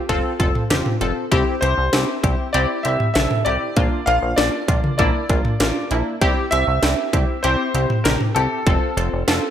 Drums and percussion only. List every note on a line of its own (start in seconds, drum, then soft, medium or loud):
0.09 kick medium
0.09 closed hi-hat medium
0.40 kick medium
0.40 closed hi-hat medium
0.55 mid tom medium
0.70 snare loud
0.70 closed hi-hat medium
0.70 mid tom medium
0.86 mid tom medium
1.01 closed hi-hat medium
1.32 kick loud
1.32 closed hi-hat medium
1.63 closed hi-hat medium
1.93 snare loud
1.93 closed hi-hat medium
2.24 kick medium
2.24 closed hi-hat medium
2.54 closed hi-hat medium
2.85 closed hi-hat medium
3.00 mid tom medium
3.15 snare loud
3.15 closed hi-hat medium
3.15 mid tom medium
3.31 mid tom medium
3.46 closed hi-hat medium
3.76 kick loud
3.76 closed hi-hat medium
4.07 closed hi-hat medium
4.38 snare loud
4.38 closed hi-hat medium
4.68 kick medium
4.68 closed hi-hat medium
4.84 mid tom medium
4.99 kick medium
4.99 closed hi-hat medium
5.29 kick medium
5.29 closed hi-hat medium
5.45 mid tom medium
5.60 snare loud
5.60 closed hi-hat medium
5.91 closed hi-hat medium
6.21 kick loud
6.21 closed hi-hat medium
6.52 closed hi-hat medium
6.83 snare loud
6.83 closed hi-hat medium
7.13 kick medium
7.13 closed hi-hat medium
7.44 closed hi-hat medium
7.75 closed hi-hat medium
7.90 mid tom medium
8.05 snare loud
8.05 closed hi-hat medium
8.05 mid tom medium
8.21 mid tom medium
8.36 closed hi-hat medium
8.67 kick loud
8.67 closed hi-hat medium
8.98 closed hi-hat medium
9.28 snare loud
9.28 closed hi-hat medium